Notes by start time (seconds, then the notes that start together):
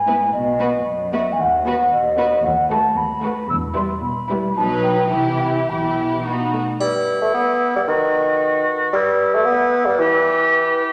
Already playing: G#2 G#5
0.07 B3 E4 B4
0.32 B1 B2 D#5
0.59 B3 F#4 B4
0.85 F#2
1.12 B3 F#4 B4 E5
1.32 G#5
1.37 D#2 F#5
1.66 B3 F#4 B4
1.90 D#2 D#5
2.17 B3 F#4 B4
2.44 D#2 F#5
2.71 A3 F#4 B4 A5
2.96 D#2 B5
3.23 A3 F#4 B4
3.49 E1 E2 E6
3.76 G3 E4 B4 C6
4.02 B2 B5
4.30 G3 E4 B4
4.57 B1 B2 F#3 D#4 B4 A5
4.83 G5
5.11 C2 C3 E3 E4 G4
5.40 E5
5.69 B1 B2 E3 E4 G4 B5
6.25 B3 D#4 F#4
6.54 A3
6.80 G3 E4 B4, triangle
7.22 A3
7.34 B3
7.76 G3
7.88 D#3 F#4
8.93 G3 E4 B4
9.35 A3
9.46 B3
9.86 G3
9.99 E3 G4